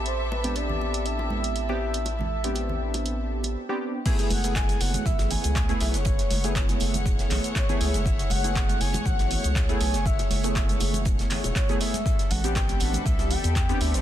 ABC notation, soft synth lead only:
X:1
M:4/4
L:1/16
Q:"Swing 16ths" 1/4=120
K:F#m
V:1 name="Soft synth lead"
=c2 B2 d4 e8- | e12 z4 | z2 f2 g2 f2 e2 g4 e c- | c4- c z6 z c2 e2- |
e2 f4 g2 f4 z2 g2 | e2 e6 z4 c2 e2- | e2 f2 =g2 f2 e2 g4 e =c |]